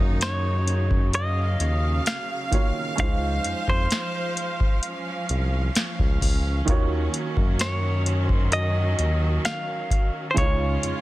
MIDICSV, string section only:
0, 0, Header, 1, 2, 480
1, 0, Start_track
1, 0, Tempo, 923077
1, 1552, Time_signature, 4, 2, 24, 8
1, 5725, End_track
2, 0, Start_track
2, 0, Title_t, "String section"
2, 0, Program_c, 0, 48
2, 0, Note_on_c, 0, 49, 80
2, 0, Note_on_c, 0, 54, 65
2, 0, Note_on_c, 0, 63, 86
2, 582, Note_off_c, 0, 63, 0
2, 593, Note_on_c, 0, 77, 79
2, 1533, Note_off_c, 0, 49, 0
2, 1533, Note_off_c, 0, 54, 0
2, 1550, Note_on_c, 0, 53, 73
2, 1552, Note_on_c, 0, 72, 73
2, 2503, Note_off_c, 0, 72, 0
2, 2515, Note_on_c, 0, 61, 68
2, 3452, Note_off_c, 0, 53, 0
2, 3452, Note_off_c, 0, 77, 0
2, 3475, Note_on_c, 0, 51, 81
2, 3476, Note_on_c, 0, 54, 83
2, 5373, Note_off_c, 0, 61, 0
2, 5374, Note_off_c, 0, 51, 0
2, 5375, Note_off_c, 0, 54, 0
2, 5395, Note_on_c, 0, 49, 80
2, 5395, Note_on_c, 0, 65, 84
2, 5397, Note_on_c, 0, 61, 68
2, 5725, Note_off_c, 0, 49, 0
2, 5725, Note_off_c, 0, 61, 0
2, 5725, Note_off_c, 0, 65, 0
2, 5725, End_track
0, 0, End_of_file